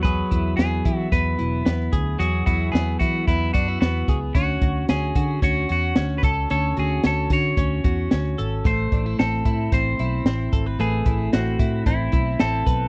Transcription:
<<
  \new Staff \with { instrumentName = "Clean electric guitar" } { \time 4/4 \key e \mixolydian \tempo 4 = 112 b'4 gis'4 b'2 | fis'8 fis'8 gis'8 fis'8 e'8 fis'8 fis'8. r16 | fis'4 gis'4 fis'8 fis'8.~ fis'32 b'32 a'8 | a'8 gis'8 a'8 cis''2 r8 |
c''4 a'4 c''2 | gis'4 fis'4 e'4 a'4 | }
  \new Staff \with { instrumentName = "Clean electric guitar" } { \time 4/4 \key e \mixolydian <fis gis'>8 e'8 b8 e'8 b8 e'8 b8 gis'8 | <fis gis'>8 e'8 b8 e'8 b8 d'16 e'16 b8 gis'8 | cis'8 fis'8 cis'8 fis'8 cis'8 fis'8 cis'8 a'8 | <cis' a'>8 fis'8 cis'8 fis'8 cis'8 fis'8 cis'8 a'8 |
a8 d'16 e'16 c'8 e'8 c'8 e'8 c'8 a'16 b'16 | <a b'>8 e'8 c'8 e'8 c'8 e'8 c'8 b'8 | }
  \new Staff \with { instrumentName = "Fingered electric bass" } { \clef bass \time 4/4 \key e \mixolydian e,8 e,8 e,8 e8 e,8 e,,8 e,8 d,8 | e,8 e,8 e,8 e8 e,8 fis,8 e,8 cis,8 | d,8 d,8 d,8 d8 d,8 e,8 d,8 cis,8 | d,8 d,8 d,8 d8 d,8 e,8 d,8 gis,,8 |
a,,8 a,,8 a,,8 a,8 a,,8 b,,8 a,,8 gis,,8 | a,,8 a,,8 a,,8 a,8 a,,8 b,,8 a,,8 b,,8 | }
  \new DrumStaff \with { instrumentName = "Drums" } \drummode { \time 4/4 <hh bd>8 <hh bd>8 <hh sn>8 <hh bd>8 <hh bd>8 hh8 <hh sn>8 <hh bd>8 | hh8 <hh bd>8 <hh sn>8 <hh bd>8 <hh bd>8 <hh bd>8 <hh sn>8 <hh bd>8 | <hh bd>8 <hh bd>8 <hh sn>8 <hh bd>8 <hh bd>8 hh8 <hh sn>8 <hh bd>8 | hh8 hh8 <hh sn>8 <hh bd>8 <hh bd>8 <hh bd>8 <hh sn>8 hh8 |
<hh bd>8 <hh bd>8 <hh sn>8 <hh bd>8 <hh bd>8 hh8 <hh sn>8 <hh bd>8 | hh8 <hh bd>8 <hh sn>8 <hh bd>8 <hh bd>8 <hh bd>8 <hh sn>8 <hh bd>8 | }
>>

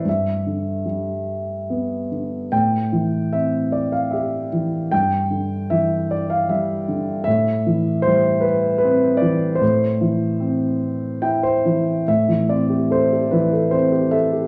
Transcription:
<<
  \new Staff \with { instrumentName = "Grand piano" } { \time 3/4 \key a \minor \tempo 4 = 75 << { e''4 r2 | g''4 e''8 d''16 f''16 e''8 r8 | g''4 e''8 d''16 f''16 e''8 r8 | e''4 c''8 b'8 b'8 d''8 |
c''2~ c''8 r8 | e''8 d''8 c''8 b'8 c''8 e''8 | } \\ { r2. | r2. | r2. | r2. |
r2 g''16 c''8. | r2. | } >> }
  \new Staff \with { instrumentName = "Grand piano" } { \clef bass \time 3/4 \key a \minor g,8 d8 g4 b8 d8 | a,8 e8 c'4 g'8 e8 | g,8 d8 e4 g8 d8 | a,8 e8 g4 c'8 e8 |
a,8 e8 c'4 e'8 e8 | a,16 e16 c'16 g'16 a'16 g'16 e16 a'16 c'16 g'16 a'16 g'16 | }
>>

